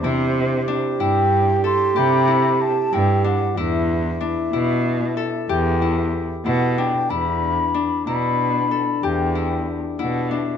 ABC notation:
X:1
M:11/8
L:1/8
Q:1/4=93
K:Em
V:1 name="Flute"
c3 g2 c' b2 a g f | e8- e f g | b3 b3 g2 z f e |]
V:2 name="French horn"
G8- G3 | E8- E2 z | D8- D3 |]
V:3 name="Harp"
E2 D E2 A G E2 E D | E2 D E2 A G E2 E D | E2 D E2 A G E2 E D |]
V:4 name="Cello" clef=bass
C,3 G,,3 C,3 G,,2 | E,,3 B,,3 E,,3 B,,2 | E,,3 B,,3 E,,3 B,,2 |]